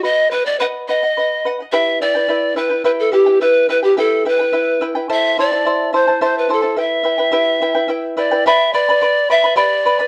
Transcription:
<<
  \new Staff \with { instrumentName = "Charango" } { \time 6/8 \key e \minor \tempo 4. = 71 <b' dis'' fis''>8 <b' dis'' fis''>16 <dis'' fis''>16 <b' dis'' fis''>8 <b' dis'' fis''>16 <dis'' fis''>16 <b' dis'' fis''>8 <b' dis'' fis''>16 <dis'' fis''>16 | <e' g' b' e'' g''>8 <e' b' e'' g''>16 <e' b' g''>16 <e' b' e'' g''>8 <e' b' e'' g''>16 <e' b' g''>16 <e' g' b' e'' g''>8 <e' b' e'' g''>16 <e' b' g''>16 | <e' b' e'' g''>8 <e' b' e'' g''>16 <e' b' g''>16 <e' g' b' e'' g''>8 <e' b' e'' g''>16 <e' b' g''>16 <e' b' e'' g''>8 <e' b' e'' g''>16 <e' b' g''>16 | <e' a' c'' e'' a''>8 <e' c'' e'' a''>16 <e' c'' a''>16 <e' c'' e'' a''>8 <e' c'' e'' a''>16 <e' c'' a''>16 <e' a' c'' e'' a''>8 <e' c'' e'' a''>16 <e' c'' a''>16 |
<e' b' e'' g''>8 <e' b' e'' g''>16 <e' b' g''>16 <e' g' b' e'' g''>8 <e' b' e'' g''>16 <e' b' g''>16 <e' b' e'' g''>8 <e' b' e'' g''>16 <e' b' g''>16 | \key g \major <g' b' d'' g'' b''>8 <b' d'' g'' b''>16 <b' d'' b''>16 <b' d'' g'' b''>8 <b' d'' g'' b''>16 <b' d'' b''>16 <g' b' d'' g'' b''>8 <b' d'' g'' b''>16 <b' d'' b''>16 | }
  \new Staff \with { instrumentName = "Pan flute" } { \time 6/8 \key e \minor dis''8 b'16 d''16 b'8 dis''4 r8 | e''8 d''4 b'8 b'16 a'16 g'8 | b'8 b'16 g'16 a'8 b'4 r8 | e''8 d''4 c''8 c''16 b'16 a'8 |
e''2~ e''8 d''8 | \key g \major e''8 d''4 e''8 d''4 | }
>>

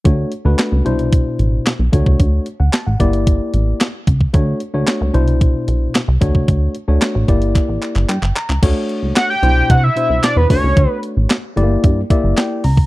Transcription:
<<
  \new Staff \with { instrumentName = "Analog synth lead" } { \time 4/4 \key d \major \tempo 4 = 112 r1 | r1 | r1 | r1 |
r4 fis''16 g''8. fis''16 e''8. d''16 b'16 cis''8~ | cis''8 r2. r8 | }
  \new Staff \with { instrumentName = "Tine electric piano" } { \time 4/4 \key d \major << { r1 | r8. fis''16 a''16 fis''8 r2 r16 | r1 | r2. g''8 bes''8 |
r1 | r2 r8 e''8 g''8 bes''8 | } \\ { <a d' fis' cis''>8 r16 <a d' fis' b'>8. <b, d' e' c''>4. r8 <a d' fis' cis''>8~ | <a d' fis' cis''>8 r4 <bes e' g' d''>4. r4 | <a d' fis' cis''>8 r16 <a d' fis' cis''>8. <b, d' e' c''>4. r8 <a d' fis' cis''>8~ | <a d' fis' cis''>8 r16 <a d' fis' cis''>8. <bes e' g' d''>4. r4 |
<a d' fis' cis''>4~ <a d' fis' cis''>16 r16 <b, d' e' c''>8. r16 <b, d' e' c''>4 <a d' fis' cis''>8~ | <a d' fis' cis''>4 r8 <a bes e' g' d''>8. r16 <bes e' g' d''>4 r8 | } >> }
  \new Staff \with { instrumentName = "Analog synth bass" } { \clef bass \time 4/4 \key d \major d,8 r16 d,16 r16 cis,16 c,4 a,,8 r16 b,,16 d,16 cis,16 | d,8 r16 d,16 r16 a,,16 g,,4 a,,8 r8 cis,8 | d,8 r16 d,16 r16 cis,16 c,4 b,,8 r16 c,16 d,16 cis,16 | d,8 r16 d,16 r16 a,,16 g,,8. a,,16 r16 g,,16 g,16 g,,16 r16 cis,16 |
d,16 r8 cis,16 r8 c,8 c8 r16 c,16 r16 e,16 d,16 cis,16 | d,16 r8 a,,16 r8 g,,8 g,8 r16 g,,16 r8 cis,8 | }
  \new DrumStaff \with { instrumentName = "Drums" } \drummode { \time 4/4 <hh bd>8 hh8 <hc hh sn>8 hh16 hh16 <hh bd>8 hh8 <hc hh sn>8 <hh bd>16 bd16 | <hh bd>8 hh8 <hc hh sn>8 <hh bd>16 hh16 <hh bd>8 hh8 <hc hh sn>8 <hh bd>16 bd16 | <hh bd>8 hh8 <hc hh sn>8 hh16 hh16 <hh bd>8 hh8 <hc hh sn>8 <hh bd>16 bd16 | <hh bd>8 hh8 <hc hh sn>8 <hh bd>16 hh16 <hc hh bd>8 <hc hh>16 <hc hh>16 <hc hh>16 hc16 <hc hh>16 hc16 |
<cymc hh bd>8 hh8 <hc hh sn>8 hh8 <hh bd>8 hh8 <hc hh sn>8 <hho bd>8 | <hh bd>8 hh8 <hc hh sn>8 hh8 <hh bd>8 <hh bd>8 <hc hh sn>8 hho16 bd16 | }
>>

